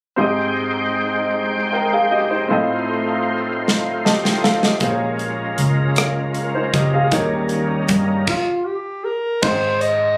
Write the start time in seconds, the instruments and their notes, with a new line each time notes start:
0.16 grand piano G#2 C4 G4 G#4, tonewheel organ G#3 D#4 C5 G5
0.21 grand piano D#5
1.72 grand piano A#4 G5
1.93 grand piano G#4 F5
2.11 grand piano G4 D#5
2.30 grand piano D#4 C5
2.48 grand piano A2 C4 F4 A4, tonewheel organ A3 D#4 F4 C5
2.52 grand piano D#5
3.68 snare
4.05 grand piano G4 D#5 A5, snare
4.24 grand piano G5, snare
4.42 grand piano A4 F5, snare
4.61 grand piano G4 D#5, snare
4.79 picked electric bass A#1, grand piano A#2 A#3 F4 G#4, tonewheel organ G#3 C#4 F4 A#4, kick, closed hi-hat
4.83 grand piano C5
4.90 grand piano C#5
5.19 closed hi-hat
5.58 picked electric bass C#2, closed hi-hat
5.96 cross-stick, closed hi-hat
6.34 closed hi-hat
6.55 grand piano D#4 C5
6.74 picked electric bass C#2, grand piano G4 D#5, kick, closed hi-hat
6.94 grand piano G#4 F5
7.11 picked electric bass D#2, grand piano D#3 A#3 D#4 F4 C#5, tonewheel organ G3 C#4 D#4 A#4, kick, closed hi-hat
7.20 grand piano G4
7.49 closed hi-hat
7.88 picked electric bass G2, kick, closed hi-hat
8.27 alto saxophone F4, kick, crash
8.66 alto saxophone G4
9.04 alto saxophone A#4
9.42 picked electric bass G#1, grand piano G#2 G#3 D#4 G5, alto saxophone C5, kick, crash
9.46 grand piano C6
9.81 alto saxophone D#5, closed hi-hat